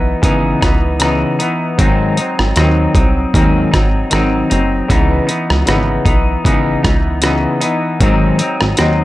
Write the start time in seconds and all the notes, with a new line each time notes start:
Already playing: B1 E3 B3 D#4
0.22 G#1 C#3 E3 B3 D#4, kick, closed hi-hat
0.61 C#2 E3 B3 D#4, kick, cross-stick, closed hi-hat
0.99 C#3 E3 B3, cross-stick, closed hi-hat
1.03 D#4
1.39 B3 D#4, closed hi-hat
1.43 E3
1.78 G#1 G#2 D#3 F#3 C4 D#4, kick, closed hi-hat
2.17 F#3 C4 D#4, closed hi-hat
2.39 G#1, cross-stick
2.56 D#2 D#3 F#3 C4 D#4, cross-stick, closed hi-hat
2.95 C2 F#3 C4 D#4, kick, closed hi-hat
3.34 D#2 G#2 D#3 F#3 C4 D#4, kick, closed hi-hat
3.72 G#1 C4 D#4, kick, cross-stick, closed hi-hat
3.76 F#3
4.10 G#1 D#3 F#3 C4, cross-stick, closed hi-hat
4.15 D#4
4.50 F#1 F#3 C4 D#4, closed hi-hat
4.88 C#2 C#3 E3 B3 D#4, kick, closed hi-hat
5.27 B3 D#4, closed hi-hat
5.31 E3
5.50 C#2, cross-stick
5.66 G#1 C#3 E3 B3, cross-stick, closed hi-hat
5.70 D#4
6.05 B1 E3 B3 D#4, kick, closed hi-hat
6.44 G#1 C#3 E3 B3 D#4, kick, closed hi-hat
6.83 C#2 E3 B3 D#4, kick, cross-stick, closed hi-hat
7.22 C#3 E3 B3, cross-stick, closed hi-hat
7.26 D#4
7.61 B3 D#4, closed hi-hat
7.65 E3
8.00 G#1 G#2 D#3 F#3 C4 D#4, kick, closed hi-hat
8.38 C4 D#4, closed hi-hat
8.43 F#3
8.61 G#1, cross-stick
8.77 D#2 D#3 F#3 C4, cross-stick, closed hi-hat
8.81 D#4